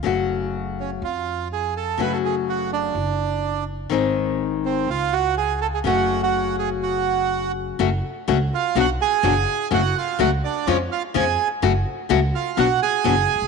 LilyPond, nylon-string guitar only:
\new Staff \with { instrumentName = "Nylon-string guitar" } { \time 4/4 \key fis \minor \tempo 4 = 124 <cis fis a cis' fis'>2 r2 | <cis fis a cis' fis'>2 r2 | <dis gis bis dis' gis'>2 r2 | <cis fis a cis' fis'>1 |
<cis fis a cis' fis'>8 r8 <cis fis a cis' fis'>8 r8 <b, fis b d' fis'>8 r8 <b, fis b d' fis'>8 r8 | <cis fis a cis' fis'>8 r8 <cis fis a cis' fis'>8 r8 <cis eis gis cis' eis'>8 r8 <cis eis gis cis' eis'>8 r8 | <cis fis a cis' fis'>8 r8 <cis fis a cis' fis'>8 r8 <b, fis b d' fis'>8 r8 <b, fis b d' fis'>8 r8 | }